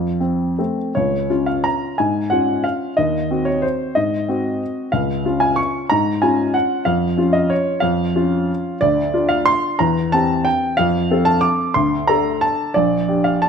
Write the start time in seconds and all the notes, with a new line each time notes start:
Already playing: F2 F5
0.20 C4
0.59 A3 C4
0.95 C#2 C#5
1.30 C#4 F4
1.46 F5
1.64 A#5
1.98 G#2 G#5
2.30 C#4 F4 F#5
2.64 F5
2.97 D#2 D#5
3.31 C4 F#4
3.45 C#5
3.62 C5
3.95 G#2 D#5
4.28 C4 F#4
4.92 C#2 F5
5.25 C#4 F4
5.40 G#5
5.56 C#6
5.89 G#2 A#5
6.22 C#4 F4 G#5
6.54 F#5
6.85 F2 F5
7.17 C#4 F4
7.33 D#5
7.50 C#5
7.80 F2 F5
8.15 C#4 F4
8.81 D2 D5
9.14 D4 F4
9.29 F5
9.46 C6
9.79 E2 A#5
10.12 C4 G4 A5
10.45 G5
10.77 F2 F5
11.11 C4 A4
11.25 A5
11.41 D6
11.74 D2 C6
12.07 D4 A4 A#5
12.41 A5
12.74 A#1 D5
13.08 D4 G4
13.24 F5
13.42 A5